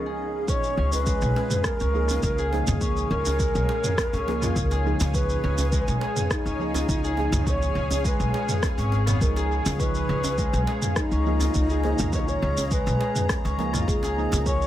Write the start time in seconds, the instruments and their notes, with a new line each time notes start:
Already playing: synth stab C#2 A#2 F3 D#4 G#4 A#4, harp G#3 B3 C#4, ambient pad C#4 G#4 D#5 F5, native american-style wooden flute G#4
0.06 harp G#4
0.47 synth stab A#2 F3 D#4 G#4, harp C#4, ambient pad G#4 C#5 F5 G#5, native american-style wooden flute C#5, kick, shaker
0.64 shaker
0.77 upright bass C#2, harp C#4
0.92 native american-style wooden flute B4, djembe tone, djembe bass, shaker
1.06 harp G#3, kick, shaker
1.21 upright bass B1, shaker
1.36 harp G#4, djembe slap
1.51 mid tom, shaker
1.64 native american-style wooden flute A#4, kick, cross-stick, shaker
1.80 upright bass C#2, harp C#4, shaker
1.93 synth stab F3 A#3 D#4 G#4
2.09 harp F4, djembe tone, djembe bass, shaker
2.23 upright bass C#2, native american-style wooden flute A#4, kick, shaker
2.38 harp G#4, shaker
2.52 synth stab F3 A#3 D#4 G#4, native american-style wooden flute G#4, djembe tone
2.67 upright bass C#2, mid tom, shaker
2.80 synth stab F3 A#3 D#4 G#4, harp C#4, kick, shaker
2.97 shaker
3.10 upright bass C#2, harp C#4, native american-style wooden flute A#4
3.25 djembe tone, djembe bass, shaker
3.39 harp G#3, kick, shaker
3.55 upright bass B1, shaker
3.69 harp G#4, djembe slap
3.84 mid tom, shaker
3.98 kick, cross-stick, djembe slap, djembe tone, shaker
4.13 upright bass C#2, harp C#4, djembe tone, shaker
4.26 synth stab F3 A#3 D#4 G#4, djembe tone
4.42 harp F4, mid tom, djembe slap, shaker
4.56 upright bass C#2, kick, shaker
4.71 harp G#4, djembe slap, djembe tone, shaker
4.84 synth stab F3 A#3 D#4 G#4
5.00 upright bass C#2, djembe slap, djembe bass, shaker
5.13 synth stab A#2 F3 D#4 G#4, harp C#4, native american-style wooden flute B4, kick, shaker
5.29 shaker
5.43 upright bass C#2, harp C#4
5.58 djembe tone, djembe bass, shaker
5.72 harp G#3, kick, shaker
5.88 upright bass B1, shaker
6.01 harp G#4, djembe slap
6.16 mid tom, shaker
6.31 native american-style wooden flute D#4, kick, cross-stick, shaker
6.46 upright bass C#2, harp C#4, shaker
6.59 synth stab F3 A#3 D#4 G#4
6.74 harp F4, djembe tone, djembe bass, shaker
6.89 upright bass C#2, kick, shaker
7.04 harp G#4, shaker
7.17 synth stab F3 A#3 D#4 G#4, djembe tone
7.32 upright bass C#2, mid tom, shaker
7.45 synth stab A#2 F3 D#4, harp C#4, kick, shaker
7.49 synth stab G#4, native american-style wooden flute C#5
7.62 shaker
7.75 upright bass C#2, harp C#4
7.91 djembe tone, djembe bass, shaker
8.05 harp G#3, native american-style wooden flute B4, kick, shaker
8.20 upright bass B1, shaker
8.34 harp G#4, djembe slap
8.49 mid tom, shaker
8.63 kick, cross-stick, djembe slap, djembe tone, shaker
8.78 upright bass G#1, harp C#4, djembe tone, shaker
8.92 djembe tone
9.07 harp B3, mid tom, djembe slap, shaker
9.21 upright bass C#2, synth stab F3 D#4 G#4 A#4, kick, shaker
9.36 harp G#4, djembe slap, djembe tone, shaker
9.66 upright bass C#2, djembe slap, djembe bass, shaker
9.78 synth stab F3 D#4 B4, harp C#4, native american-style wooden flute B4, ambient pad A#5, kick, shaker
9.82 synth stab G#4
9.95 shaker
10.09 upright bass C#2, harp C#4
10.24 djembe tone, djembe bass, shaker
10.38 harp G#3, kick, shaker
10.53 upright bass B1, shaker
10.67 harp G#4, djembe slap
10.82 mid tom, shaker
10.96 native american-style wooden flute D#4, kick, cross-stick, shaker
11.11 upright bass C#2, harp C#4, shaker
11.26 synth stab F3 A#3 D#4 G#4
11.40 harp F4, djembe tone, djembe bass, shaker
11.54 upright bass C#2, kick, shaker
11.70 harp G#4, shaker
11.83 synth stab F3 A#3 D#4 G#4, djembe tone
11.98 upright bass C#2, mid tom, shaker
12.11 synth stab A#2 F3 D#4, harp C#4, native american-style wooden flute C#5, kick, shaker
12.15 synth stab G#4
12.20 native american-style wooden flute D#4
12.28 native american-style wooden flute C#5, shaker
12.42 upright bass C#2, harp C#4
12.57 djembe tone, djembe bass, shaker
12.71 harp G#3, native american-style wooden flute B4, kick, shaker
12.87 upright bass B1, shaker
13.00 harp G#4, djembe slap
13.16 mid tom, shaker
13.29 kick, cross-stick, djembe slap, djembe tone, shaker
13.45 upright bass C#2, harp C#4, djembe tone, shaker
13.58 synth stab F3 A#3 D#4 G#4, djembe tone
13.74 harp F4, mid tom, djembe slap, shaker
13.88 upright bass C#2, native american-style wooden flute G#4, kick, shaker
14.03 harp G#4, djembe slap, djembe tone, shaker
14.16 synth stab F3 A#3 D#4 G#4
14.32 upright bass C#2, djembe slap, djembe bass, shaker
14.45 synth stab F3 A#3 D#4 G#4, harp C#4, native american-style wooden flute C#5, kick, shaker
14.62 shaker